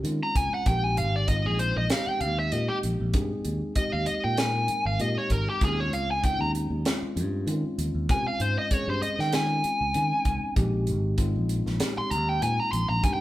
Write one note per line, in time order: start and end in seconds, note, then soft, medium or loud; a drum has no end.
0.04 0.20 D#3 medium
0.04 0.63 G#3 medium
0.04 0.63 C4 medium
0.04 0.63 C#4 medium
0.04 0.64 F4 medium
0.04 closed hi-hat medium
0.23 0.36 A#5 medium
0.35 0.51 C#2 medium
0.35 0.52 G#5 medium
0.35 kick medium
0.35 closed hi-hat medium
0.54 0.67 F#5 medium
0.66 0.99 A#1 loud
0.66 1.25 G#3 medium
0.66 1.25 C4 medium
0.66 1.26 D#4 medium
0.66 1.26 G4 medium
0.66 0.85 G5 medium
0.66 kick medium
0.66 closed hi-hat medium
0.85 0.98 G#5 medium
0.97 1.43 G#1 medium
0.97 1.14 F5 medium
0.97 closed hi-hat medium
1.16 1.28 D5 medium
1.27 1.86 G#3 medium
1.27 1.87 C4 medium
1.27 1.87 D#4 medium
1.27 1.87 F4 medium
1.27 1.45 D#5 medium
1.27 kick medium
1.27 closed hi-hat medium
1.45 1.75 A#1 medium
1.45 1.60 G#4 medium
1.59 1.76 C5 medium
1.59 closed hi-hat medium
1.77 1.90 A#1 medium
1.77 1.91 D#5 medium
1.89 2.48 G#3 medium
1.89 2.49 C4 medium
1.89 2.49 D#4 medium
1.89 2.49 G4 medium
1.89 2.09 F5 medium
1.89 snare loud
1.89 closed hi-hat medium
2.07 2.21 G5 loud
2.07 muted fingered electric bass stroke soft
2.21 2.50 D#2 medium
2.21 2.38 F5 medium
2.21 closed hi-hat medium
2.39 2.53 E5 medium
2.52 2.68 A#2 loud
2.52 3.10 G#3 medium
2.52 3.11 C4 medium
2.52 3.11 D#4 medium
2.52 3.11 G4 medium
2.52 2.69 D#5 medium
2.52 closed hi-hat medium
2.68 2.77 G4 medium
2.68 muted fingered electric bass stroke soft
2.83 2.99 A#1 medium
2.83 closed hi-hat medium
3.00 3.13 A#1 medium
3.13 3.30 G2 medium
3.13 3.72 G#3 medium
3.13 3.72 C4 medium
3.13 3.73 D#4 medium
3.13 3.73 G#4 medium
3.13 kick loud
3.13 closed hi-hat medium
3.45 3.61 D#2 medium
3.45 closed hi-hat medium
3.75 4.34 G#3 medium
3.75 4.34 C4 medium
3.75 4.35 D#4 medium
3.75 4.35 G4 medium
3.75 3.92 D#5 medium
3.75 muted fingered electric bass stroke soft
3.75 kick medium
3.75 closed hi-hat medium
3.92 4.07 D#2 medium
3.92 4.06 F5 loud
4.06 4.23 D#5 medium
4.06 muted fingered electric bass stroke soft
4.06 closed hi-hat medium
4.24 4.67 A#2 medium
4.24 4.39 G5 medium
4.37 4.96 G#3 medium
4.37 4.97 C4 medium
4.37 4.97 D#4 medium
4.37 4.97 A#4 medium
4.37 4.86 G#5 loud
4.37 snare loud
4.37 closed hi-hat medium
4.68 muted fingered electric bass stroke soft
4.68 closed hi-hat medium
4.85 4.99 G#1 medium
4.85 5.00 F5 medium
4.99 5.16 A#2 medium
4.99 5.58 G#3 medium
4.99 5.58 C4 medium
4.99 5.58 D#4 medium
4.99 5.58 G4 medium
4.99 5.17 D#5 medium
4.99 closed hi-hat medium
5.18 5.31 C#5 medium
5.30 5.46 G#1 medium
5.30 5.47 A#4 medium
5.30 kick medium
5.30 closed hi-hat medium
5.47 5.62 G4 medium
5.47 muted fingered electric bass stroke soft
5.61 5.92 D#2 loud
5.61 6.20 G#3 medium
5.61 6.20 C4 medium
5.61 6.20 C#4 medium
5.61 6.21 F4 medium
5.61 5.79 G#4 medium
5.61 kick medium
5.61 closed hi-hat medium
5.80 5.93 C#5 medium
5.92 6.37 C#2 medium
5.92 6.09 F5 loud
5.92 closed hi-hat medium
6.11 6.24 G#5 loud
6.24 6.82 G#3 medium
6.24 6.82 C4 medium
6.24 6.82 C#4 medium
6.24 6.82 D#4 medium
6.24 6.40 G5 medium
6.24 kick medium
6.24 closed hi-hat medium
6.39 6.69 D#2 medium
6.39 6.49 A#5 medium
6.55 closed hi-hat medium
6.70 6.84 D#2 medium
6.85 7.44 G#3 medium
6.85 7.44 C4 medium
6.85 7.44 C#4 medium
6.85 7.44 F4 loud
6.85 snare loud
6.85 closed hi-hat medium
7.02 muted fingered electric bass stroke soft
7.16 7.46 G2 medium
7.16 closed hi-hat medium
7.47 7.63 D#3 loud
7.47 8.06 G#3 medium
7.47 8.06 C4 medium
7.47 8.06 C#4 medium
7.47 8.06 F4 medium
7.47 closed hi-hat medium
7.64 muted fingered electric bass stroke soft
7.78 7.94 D#2 medium
7.78 closed hi-hat medium
7.94 8.08 D#2 medium
8.09 8.25 C3 medium
8.09 8.68 G#3 medium
8.09 8.68 C4 medium
8.09 8.68 C#4 medium
8.09 8.68 F4 medium
8.09 8.26 G#5 medium
8.09 kick loud
8.09 closed hi-hat medium
8.28 8.41 F5 medium
8.40 8.56 G#2 medium
8.40 8.57 C5 medium
8.40 closed hi-hat medium
8.59 8.74 D#5 medium
8.71 9.29 G#3 medium
8.71 9.29 C4 medium
8.71 9.30 C#4 medium
8.71 9.30 G#4 medium
8.71 8.89 C#5 medium
8.71 muted fingered electric bass stroke soft
8.71 kick medium
8.71 closed hi-hat medium
8.88 9.01 G2 medium
8.88 9.02 C5 medium
9.02 9.19 D#5 medium
9.02 muted fingered electric bass stroke soft
9.02 closed hi-hat medium
9.19 9.62 D#3 medium
9.19 9.33 G5 medium
9.19 snare soft
9.32 9.91 G#3 medium
9.32 9.91 C4 medium
9.32 9.91 C#4 medium
9.32 9.91 F4 medium
9.32 10.54 G#5 medium
9.32 snare loud
9.32 closed hi-hat medium
9.64 muted fingered electric bass stroke soft
9.64 closed hi-hat medium
9.81 9.94 C#2 medium
9.94 10.11 D#3 medium
9.94 10.53 G#3 medium
9.94 10.53 C4 medium
9.94 10.53 C#4 medium
9.94 10.54 D#4 medium
9.94 closed hi-hat medium
10.25 10.41 C#2 medium
10.25 kick medium
10.25 closed hi-hat medium
10.43 muted fingered electric bass stroke soft
10.56 10.90 A#1 medium
10.56 11.15 G#3 medium
10.56 11.15 C4 medium
10.56 11.15 D#4 medium
10.56 11.15 G4 loud
10.56 kick medium
10.56 closed hi-hat medium
10.87 11.33 G#1 medium
10.87 closed hi-hat medium
11.18 11.77 G#3 medium
11.18 11.77 C4 medium
11.18 11.77 D#4 medium
11.18 11.78 F4 medium
11.18 kick medium
11.18 closed hi-hat medium
11.36 11.65 A#1 medium
11.49 closed hi-hat medium
11.66 11.80 A#1 medium
11.66 snare soft
11.80 12.39 G#3 medium
11.80 12.39 C4 medium
11.80 12.39 D#4 medium
11.80 12.39 G4 medium
11.80 snare loud
11.80 closed hi-hat medium
11.98 12.11 C6 medium
11.98 muted fingered electric bass stroke soft
12.11 12.41 D#2 medium
12.11 12.28 A#5 medium
12.11 closed hi-hat medium
12.29 12.42 G5 medium
12.42 12.58 A#2 medium
12.42 13.00 G#3 medium
12.42 13.01 C4 medium
12.42 13.01 D#4 medium
12.42 13.01 F4 medium
12.42 12.59 G#5 medium
12.42 closed hi-hat medium
12.59 12.71 A#5 medium
12.59 muted fingered electric bass stroke soft
12.72 12.88 A#1 medium
12.72 12.89 C6 loud
12.72 closed hi-hat medium
12.89 13.03 A#1 medium
12.89 13.04 A#5 medium
13.04 13.20 G2 medium
13.04 13.21 G#3 medium
13.04 13.21 C4 medium
13.04 13.21 D#4 medium
13.04 13.21 G4 medium
13.04 13.13 G#5 medium
13.04 kick medium
13.04 closed hi-hat medium
13.14 13.21 G5 medium